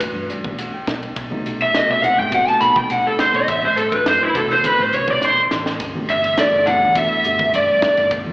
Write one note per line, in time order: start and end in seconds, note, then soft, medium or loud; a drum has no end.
0.00 0.75 B2 medium
0.00 0.75 E3 medium
0.00 0.76 A3 medium
0.00 0.75 D4 medium
0.00 0.76 F#4 medium
0.00 kick medium
0.00 hi-hat pedal medium
0.00 ride medium
0.15 0.27 G2 medium
0.30 0.57 D5 medium
0.30 hi-hat pedal medium
0.30 ride soft
0.44 0.69 B1 medium
0.44 kick medium
0.44 high conga medium
0.58 0.73 F#5 medium
0.58 hi-hat pedal medium
0.58 ride medium
0.74 1.14 G5 medium
0.87 1.12 B1 medium
0.87 kick medium
0.87 snare medium
0.87 hi-hat pedal medium
0.87 ride medium
0.87 low conga medium
1.03 ride medium
1.16 1.29 B1 loud
1.16 kick loud
1.16 hi-hat pedal medium
1.16 ride medium
1.30 1.69 C3 medium
1.30 1.70 F#3 medium
1.30 1.70 A3 medium
1.30 1.70 B3 medium
1.30 1.70 D#4 medium
1.30 high conga medium
1.45 1.70 B1 medium
1.45 hi-hat pedal medium
1.45 ride medium
1.61 1.75 E5 medium
1.61 ride medium
1.73 2.00 C3 medium
1.73 2.00 F#3 medium
1.73 2.00 A3 medium
1.73 2.00 B3 medium
1.73 2.01 F#4 medium
1.73 1.90 D#5 medium
1.73 snare medium
1.73 hi-hat pedal medium
1.73 ride medium
1.90 2.20 B1 medium
1.90 2.04 E5 medium
2.02 2.28 C3 medium
2.02 2.29 F#3 medium
2.02 2.29 A3 medium
2.02 2.29 B3 medium
2.02 2.29 D#4 medium
2.02 2.18 F#5 medium
2.02 hi-hat pedal medium
2.02 ride medium
2.02 low conga medium
2.19 2.43 A2 medium
2.19 2.34 G5 medium
2.31 2.58 C3 medium
2.31 2.58 F#3 medium
2.31 2.58 A3 medium
2.31 2.58 B3 medium
2.31 2.59 F#4 medium
2.31 2.48 F#5 medium
2.31 kick medium
2.31 hi-hat pedal medium
2.31 ride medium
2.47 2.62 A5 medium
2.47 snare soft
2.60 2.86 B1 medium
2.60 3.47 C3 medium
2.60 3.48 F#3 medium
2.60 3.48 A3 medium
2.60 3.48 B3 medium
2.60 3.48 D#4 medium
2.60 2.76 B5 loud
2.60 hi-hat pedal medium
2.60 ride soft
2.76 2.91 G5 medium
2.76 kick medium
2.76 high conga medium
2.90 3.03 B2 medium
2.90 3.05 F#5 medium
2.90 hi-hat pedal medium
2.90 ride medium
3.07 3.20 A4 medium
3.19 3.34 C5 medium
3.19 muted fingered electric bass stroke soft
3.19 kick medium
3.19 snare loud
3.19 hi-hat pedal medium
3.19 ride medium
3.34 3.46 B1 medium
3.34 3.49 D#5 medium
3.34 ride medium
3.48 3.65 A1 medium
3.48 3.63 E5 medium
3.48 kick medium
3.48 hi-hat pedal medium
3.48 ride medium
3.63 4.00 A2 medium
3.63 3.77 C5 medium
3.63 high conga medium
3.77 3.94 A4 medium
3.77 hi-hat pedal medium
3.77 ride medium
3.91 4.30 B2 medium
3.91 4.30 E3 medium
3.91 4.31 A3 medium
3.91 4.30 D4 medium
3.91 4.31 F#4 medium
3.91 4.07 B4 medium
3.91 kick medium
3.91 ride medium
4.06 4.19 F#2 medium
4.06 4.22 C5 medium
4.06 snare loud
4.06 hi-hat pedal medium
4.06 ride medium
4.23 4.36 E4 medium
4.34 4.60 C2 medium
4.34 5.38 B2 medium
4.34 5.38 E3 medium
4.34 5.39 A3 medium
4.34 5.39 D4 medium
4.34 5.39 F#4 medium
4.34 4.50 A4 medium
4.34 kick medium
4.34 hi-hat pedal medium
4.34 ride medium
4.50 4.65 C5 medium
4.50 snare soft
4.64 4.80 B4 medium
4.64 kick medium
4.64 hi-hat pedal medium
4.64 ride medium
4.64 high conga medium
4.79 4.91 A2 medium
4.79 4.95 C5 medium
4.79 high conga medium
4.93 5.19 C2 medium
4.93 5.10 C#5 medium
4.93 hi-hat pedal medium
4.93 ride medium
5.08 5.24 D5 medium
5.08 kick medium
5.08 high conga medium
5.08 low conga medium
5.21 5.48 B1 medium
5.21 5.41 C5 medium
5.21 snare medium
5.21 hi-hat pedal medium
5.51 5.77 A1 medium
5.51 snare medium
5.51 hi-hat pedal medium
5.51 low conga medium
5.66 snare medium
5.80 5.93 G1 loud
5.80 kick loud
5.80 hi-hat pedal medium
5.80 ride medium
5.95 6.33 B2 medium
5.95 6.33 E3 medium
5.95 6.34 A3 medium
5.95 6.34 D4 medium
5.95 6.34 G4 medium
5.95 high conga medium
6.08 6.33 G1 medium
6.08 6.38 E5 medium
6.08 hi-hat pedal medium
6.08 ride medium
6.24 ride medium
6.37 6.64 B2 medium
6.37 6.63 E3 medium
6.37 6.64 A3 medium
6.37 6.64 D4 medium
6.37 6.64 A4 medium
6.37 6.67 D5 medium
6.37 snare loud
6.37 hi-hat pedal medium
6.37 ride medium
6.52 6.83 G1 medium
6.66 6.93 B2 medium
6.66 6.93 E3 medium
6.66 6.93 A3 medium
6.66 6.93 D4 medium
6.66 6.94 G4 medium
6.66 6.95 F#5 loud
6.66 hi-hat pedal medium
6.66 ride medium
6.66 low conga medium
6.82 7.06 E2 medium
6.95 7.22 B2 medium
6.95 7.22 E3 medium
6.95 7.22 A3 medium
6.95 7.22 D4 medium
6.95 7.23 E4 medium
6.95 7.50 E5 medium
6.95 kick medium
6.95 hi-hat pedal medium
6.95 ride medium
7.24 7.49 G1 medium
7.24 8.29 B2 medium
7.24 8.29 E3 medium
7.24 8.29 A3 medium
7.24 8.29 D4 medium
7.24 8.29 G4 medium
7.24 hi-hat pedal medium
7.24 ride soft
7.39 kick medium
7.39 high conga medium
7.54 7.67 G2 medium
7.54 8.09 D5 medium
7.54 hi-hat pedal medium
7.54 ride medium
7.82 muted fingered electric bass stroke soft
7.82 kick medium
7.82 snare loud
7.82 hi-hat pedal medium
7.82 ride medium
7.82 low conga medium
7.97 8.28 G1 medium
7.97 snare soft
7.97 ride medium
8.11 kick loud
8.11 hi-hat pedal medium
8.11 ride medium
8.26 8.33 G2 medium
8.26 high conga medium